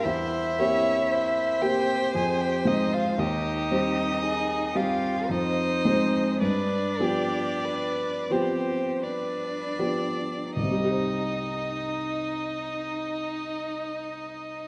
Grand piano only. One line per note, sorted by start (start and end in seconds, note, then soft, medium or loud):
0.05 0.56 E2 soft
0.58 1.58 A#3 soft
0.58 1.59 C4 soft
0.58 1.59 G4 soft
1.62 2.10 A#3 soft
1.62 2.10 C4 soft
1.62 2.10 G4 soft
2.15 2.65 F2 soft
2.65 3.14 G#3 soft
2.65 3.14 C4 soft
2.65 3.14 C5 soft
3.18 3.69 D#2 soft
3.71 4.71 G3 soft
3.71 4.71 C4 soft
3.71 4.71 C5 soft
4.75 5.25 G3 soft
4.75 5.25 C4 soft
4.75 5.25 C5 soft
5.29 5.83 F2 soft
5.85 6.37 G#3 soft
5.85 6.38 C4 soft
5.85 6.38 C5 soft
6.41 6.99 G2 soft
7.00 8.26 F3 soft
7.00 8.26 B3 soft
7.00 8.26 G4 soft
8.30 9.75 F3 soft
8.30 9.75 B3 soft
8.30 9.75 G4 soft
9.79 10.51 F3 soft
9.79 10.51 B3 soft
9.79 10.51 G4 soft
10.56 14.68 C2 soft
10.63 14.68 C3 soft
10.71 14.68 G3 soft
10.78 14.68 C4 soft
10.84 14.68 G4 soft
10.91 14.68 C5 soft